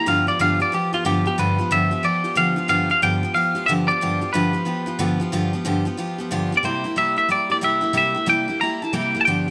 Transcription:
0.06 steel-string acoustic guitar G2 D3 F3 B3 F4 G4, clean electric guitar F5
0.27 steel-string acoustic guitar F3 B3 F4 G4, clean electric guitar D5
0.39 steel-string acoustic guitar G2 D3 F3 B3 F4 G4, clean electric guitar F5
0.60 steel-string acoustic guitar F3 B3 F4 G4, clean electric guitar D5
0.72 steel-string acoustic guitar F3 B3 F4 G4, clean electric guitar G4
0.93 steel-string acoustic guitar F3 B3 F4 G4, clean electric guitar F4
1.05 steel-string acoustic guitar G2 D3 F3 B3 F4 G4, clean electric guitar G4
1.26 steel-string acoustic guitar F3 B3 F4 G4, clean electric guitar G4
1.38 steel-string acoustic guitar G2 D3 F3 B3 F4 G4, clean electric guitar B4
1.58 steel-string acoustic guitar F3 B3 F4 G4
1.71 steel-string acoustic guitar G2 D3 F3 B3 F4 G4, clean electric guitar E5
1.91 steel-string acoustic guitar F3 B3 F4 G4
2.03 steel-string acoustic guitar F3 B3 F4 G4, clean electric guitar D5
2.24 steel-string acoustic guitar F3 B3 F4 G4
2.35 steel-string acoustic guitar G2 D3 F3 B3 F4 G4, clean electric guitar F5
2.56 steel-string acoustic guitar F3 B3 F4 G4
2.68 steel-string acoustic guitar G2 D3 F3 B3 F4 G4, clean electric guitar F5
2.90 steel-string acoustic guitar F3 B3 F4 G4, clean electric guitar F5
3.02 steel-string acoustic guitar G2 D3 F3 B3 F4 G4, clean electric guitar G5
3.23 steel-string acoustic guitar F3 B3 F4 G4
3.34 steel-string acoustic guitar F3 B3 F4 G4, clean electric guitar F5
3.55 steel-string acoustic guitar F3 B3 F4 G4
3.66 steel-string acoustic guitar G2 D3 F3 B3 F4 G4, clean electric guitar E5
3.88 steel-string acoustic guitar F3 B3 F4 G4, clean electric guitar D5
4.01 steel-string acoustic guitar G2 D3 F3 B3 F4 G4
4.21 steel-string acoustic guitar F3 B3 F4 G4
4.33 steel-string acoustic guitar G2 D3 F3 B3 F4 G4, clean electric guitar B4
4.53 steel-string acoustic guitar F3 B3 F4 G4
4.65 steel-string acoustic guitar F3 B3 F4 G4
4.86 steel-string acoustic guitar F3 B3 F4 G4
4.99 steel-string acoustic guitar G2 D3 F3 B3 F4 G4
5.20 steel-string acoustic guitar F3 B3 F4 G4
5.32 steel-string acoustic guitar G2 D3 F3 B3 F4 G4
5.53 steel-string acoustic guitar F3 B3 F4 G4
5.65 steel-string acoustic guitar G2 D3 F3 B3 F4 G4
5.85 steel-string acoustic guitar F3 B3 F4 G4
5.97 steel-string acoustic guitar F3 B3 F4 G4
6.18 steel-string acoustic guitar F3 B3 F4 G4
6.31 steel-string acoustic guitar G2 D3 F3 B3 F4 G4
6.52 steel-string acoustic guitar F3 B3 F4 G4
6.57 clean electric guitar D5
6.63 steel-string acoustic guitar C3 G3 A#3 E4 G4, clean electric guitar C5
6.84 steel-string acoustic guitar A#3 E4 G4
6.96 steel-string acoustic guitar C3 G3 A#3 E4 G4, clean electric guitar E5
7.16 steel-string acoustic guitar A#3 E4 G4, clean electric guitar E5
7.29 steel-string acoustic guitar G3 A#3 E4 G4, clean electric guitar D5
7.50 steel-string acoustic guitar A#3 E4 G4, clean electric guitar D5
7.61 steel-string acoustic guitar C3 G3 A#3 E4 G4, clean electric guitar E5
7.81 steel-string acoustic guitar A#3 E4 G4
7.93 steel-string acoustic guitar C3 G3 A#3 E4 G4
7.98 clean electric guitar E5
8.14 steel-string acoustic guitar A#3 E4 G4
8.26 steel-string acoustic guitar C3 G3 A#3 E4 G4, clean electric guitar G5
8.48 steel-string acoustic guitar A#3 E4 G4
8.61 steel-string acoustic guitar G3 A#3 E4 G4, clean electric guitar A#5
8.82 steel-string acoustic guitar A#3 E4 G4, clean electric guitar A5
8.93 steel-string acoustic guitar C3 G3 A#3 E4 G4, clean electric guitar G5
9.14 steel-string acoustic guitar A#3 E4 G4
9.21 clean electric guitar A5
9.25 steel-string acoustic guitar G2 D3 F3 B3 D4 G4, clean electric guitar G5

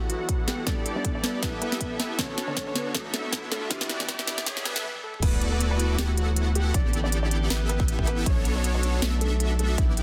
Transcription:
Already playing: synth pluck E3 B3 D4 A4, string section E3 B3 D4 F#4, analog polysynth B3 E4 F#4 A4 F#5, riser
0.10 grand piano F#3 F#4, closed hi-hat
0.29 kick, closed hi-hat
0.48 grand piano G3 G4, snare, closed hi-hat
0.66 synth pluck G3 B3 D4 A4, string section G3 A4, analog polysynth B3 E4 G4 A4 D5, grand piano D4 D5, kick, snare, closed hi-hat
0.86 closed hi-hat
0.95 synth pluck G3 B3 D4 A4, grand piano D4 D5
1.05 kick, closed hi-hat
1.15 grand piano D4 D5
1.22 synth pluck G3 B3 D4, snare, closed hi-hat
1.26 synth pluck B4
1.43 analog polysynth B3 E4 G4 A4 E5, grand piano B3 B4, kick, snare, closed hi-hat
1.62 grand piano B3 B4, closed hi-hat
1.72 snare
1.81 kick, closed hi-hat
2.00 grand piano B3 B4, snare, closed hi-hat
2.18 synth pluck D3 B3 C#4 A4, string section D3 C#5, analog polysynth B3 D4 F#4 A4 C#5, grand piano C#4 C#5, kick, snare, closed hi-hat
2.38 snare, closed hi-hat
2.47 synth pluck D3 B3 C#4 A4, grand piano C#4 C#5
2.57 kick, snare, closed hi-hat
2.67 grand piano C#4 C#5
2.74 synth pluck D3 B3 B4 C#5, snare, closed hi-hat
2.94 grand piano A3 A4, analog polysynth B3 D4 F#4 A4 E5, kick, snare, closed hi-hat
3.13 grand piano A3 A4, snare, closed hi-hat
3.33 kick, snare, closed hi-hat
3.51 grand piano A3 A4, snare, closed hi-hat
3.70 string section B2 E3 G4, synth pluck E3 B3 D4 G4, analog polysynth B3 D4 E4 G4 D5, grand piano E4 E5, kick, snare, closed hi-hat
3.81 snare
3.89 snare, closed hi-hat
3.99 synth pluck E3 B3 D4 G4, grand piano E4 E5, snare
4.08 kick, snare, closed hi-hat
4.19 grand piano E4 E5, snare
4.26 synth pluck E3 B3 D4 A4, snare, closed hi-hat
4.38 snare
4.46 analog polysynth B3 D4 E4 G4 E5, grand piano C#4 C#5, kick, snare, closed hi-hat
4.57 snare
4.65 grand piano B3 B4, snare, closed hi-hat
4.76 snare
4.85 high tom
4.95 high tom
5.04 grand piano A3 A4
5.14 mid tom
5.22 sub bass D2, string section E3 B3 F#4, analog polysynth B3 E4 F#4 A4 D5, grand piano B3 B4, kick, closed hi-hat, crash, impact
5.42 closed hi-hat
5.52 grand piano B3 B4
5.61 closed hi-hat
5.71 grand piano B3 B4
5.80 closed hi-hat
5.98 sub bass D2, grand piano G3 G4, analog polysynth B3 E4 F#4 A4 F#5, snare, closed hi-hat
6.17 grand piano F#3 F#4, closed hi-hat
6.36 closed hi-hat
6.55 grand piano G3 G4, closed hi-hat
6.74 sub bass A1, string section D3 G4, analog polysynth B3 E4 G4 A4 D5, grand piano D4 D5, kick, closed hi-hat
6.93 closed hi-hat
7.04 grand piano D4 D5
7.12 closed hi-hat
7.23 grand piano D4 D5
7.31 closed hi-hat
7.50 sub bass A1, analog polysynth B3 E4 G4 A4 E5, grand piano B3 B4, snare, closed hi-hat
7.69 grand piano B3 B4, closed hi-hat
7.80 kick
7.88 closed hi-hat
7.99 kick
8.07 grand piano B3 B4, closed hi-hat
8.26 sub bass B1, string section A3 D4, analog polysynth B3 D4 F#4 A4 C#5, grand piano C#4 C#5, kick, closed hi-hat
8.45 closed hi-hat
8.56 grand piano C#4 C#5
8.64 closed hi-hat
8.75 grand piano C#4 C#5
8.83 closed hi-hat
9.02 sub bass B1, grand piano A3 A4, analog polysynth B3 D4 F#4 A4 E5, snare, closed hi-hat
9.21 grand piano A3 A4, closed hi-hat
9.40 closed hi-hat
9.59 grand piano A3 A4, closed hi-hat
9.78 sub bass B1, string section E3 B3 G4, analog polysynth B3 D4 E4 G4 D5, grand piano E4 E5, kick, closed hi-hat
9.97 closed hi-hat

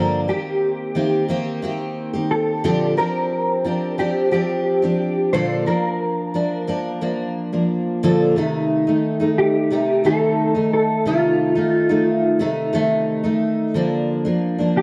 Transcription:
Already playing: steel-string acoustic guitar G2 D3 F3 A#3 D4 G4, clean electric guitar A#4
0.28 steel-string acoustic guitar D#3 A#3 C4 G4, clean electric guitar G4
0.95 steel-string acoustic guitar D#3 A#3 C4 G4
1.28 steel-string acoustic guitar D#3 A#3 C4 G4
1.62 steel-string acoustic guitar D#3 A#3 C4 G4
2.13 steel-string acoustic guitar D#3 A#3 C4 G4
2.31 clean electric guitar A4
2.64 steel-string acoustic guitar A#2 D3 F3 C4 D4 G4
2.97 steel-string acoustic guitar F3 C4 D4 G4, clean electric guitar A#4
3.64 steel-string acoustic guitar F3 C4 D4 G4
3.98 steel-string acoustic guitar F3 C4 D4 G4, clean electric guitar G4
4.31 steel-string acoustic guitar F3 C4 D4 G4, clean electric guitar G4
4.82 steel-string acoustic guitar F3 C4 D4 G4
5.33 steel-string acoustic guitar A#2 D3 F3 A#3 D4 A4, clean electric guitar C5
5.66 steel-string acoustic guitar F3 A#3 D4, clean electric guitar A#4
6.34 steel-string acoustic guitar F3 A#3 D4
6.67 steel-string acoustic guitar F3 A#3 D4
7.01 steel-string acoustic guitar F3 A#3 D4
7.53 steel-string acoustic guitar F3 A#3 D4
8.03 steel-string acoustic guitar A#2 D3 F3 A#3 D4 A4
8.36 steel-string acoustic guitar C3 D#3 A3 D#4
8.87 steel-string acoustic guitar D#3 A3 D#4
9.20 steel-string acoustic guitar D#3 A3 D#4
9.38 clean electric guitar G4
9.71 steel-string acoustic guitar C3 D#3 A3 D#4
10.04 steel-string acoustic guitar C3 D#3 A3 D#4, clean electric guitar A4
10.55 steel-string acoustic guitar D#3 A3 D#4
10.73 clean electric guitar A4
11.06 steel-string acoustic guitar C3 D#3 A3 D#4, clean electric guitar F4
11.55 steel-string acoustic guitar D#3 A3 D#4
11.89 steel-string acoustic guitar D#3 A3 D#4
12.39 steel-string acoustic guitar C3 D#3 A3 D#4
12.73 steel-string acoustic guitar C3 D#3 A3 D#4
13.23 steel-string acoustic guitar D#3 A3 D#4
13.74 steel-string acoustic guitar D3 F3 A#3 D4
14.25 steel-string acoustic guitar F3 A#3 D4
14.59 steel-string acoustic guitar F3 A#3 D4
14.77 clean electric guitar G4

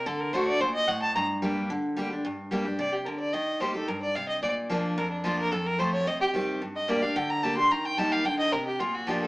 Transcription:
0.06 steel-string acoustic guitar D3, fiddle A4
0.20 fiddle A#4
0.33 steel-string acoustic guitar D3 A3 D4 F#4, fiddle C5
0.47 fiddle D5
0.61 steel-string acoustic guitar A#2, fiddle C5
0.75 fiddle D#5
0.88 steel-string acoustic guitar A2, fiddle F#5
1.02 fiddle A5
1.15 steel-string acoustic guitar G2, fiddle A#5
1.42 steel-string acoustic guitar G3 A#3 D4 G4
1.70 steel-string acoustic guitar D3
1.96 steel-string acoustic guitar G3 A#3 D4 G4
2.10 steel-string acoustic guitar D4 G4
2.25 steel-string acoustic guitar G2
2.51 steel-string acoustic guitar G3 A#3 D4 G4
2.65 steel-string acoustic guitar D4 G4
2.79 steel-string acoustic guitar C3, fiddle D5
2.93 fiddle G4
3.06 steel-string acoustic guitar D3, fiddle A#4
3.20 fiddle D5
3.33 steel-string acoustic guitar D#3, fiddle D#5
3.60 steel-string acoustic guitar G3 A#3 D#4 G4, fiddle C5
3.74 steel-string acoustic guitar D#4 G4, fiddle A4
3.88 steel-string acoustic guitar G2, fiddle A#4
4.02 fiddle D5
4.16 steel-string acoustic guitar C3, fiddle F5
4.29 fiddle D#5
4.43 steel-string acoustic guitar A#2, fiddle D5
4.69 steel-string acoustic guitar F3 A#3 D4 F4
4.97 steel-string acoustic guitar F2, fiddle A#4
5.12 fiddle D4
5.24 steel-string acoustic guitar F3 A#3 D4 F4, fiddle F4
5.38 fiddle A#4
5.52 steel-string acoustic guitar F2, fiddle A4
5.66 fiddle A#4
5.79 steel-string acoustic guitar F3 A3 C4 F4, fiddle C5
5.94 fiddle C#5
6.07 steel-string acoustic guitar C3, fiddle D#5
6.21 fiddle G4
6.34 steel-string acoustic guitar D#3 G3 C4 G4
6.62 steel-string acoustic guitar G2
6.76 fiddle D#5
6.88 steel-string acoustic guitar G3 A#3 D4 G4, fiddle D5
7.02 steel-string acoustic guitar D4 G4, fiddle F5
7.16 steel-string acoustic guitar D3, fiddle G5
7.30 fiddle A#5
7.43 steel-string acoustic guitar G3 A#3 D4 G4, fiddle A5
7.57 steel-string acoustic guitar D4 G4, fiddle C6
7.71 steel-string acoustic guitar D#3, fiddle A#5
7.85 fiddle G5
7.97 steel-string acoustic guitar G3 A#3 D#4 G4, fiddle A5
8.12 fiddle F5
8.25 steel-string acoustic guitar D3, fiddle G5
8.39 fiddle D#5
8.53 steel-string acoustic guitar C3, fiddle A#4
8.67 fiddle G4
8.80 steel-string acoustic guitar A#2, fiddle F4
8.94 fiddle F#4
9.07 steel-string acoustic guitar F3 A#3 D4 F4, fiddle G4
9.22 fiddle A4

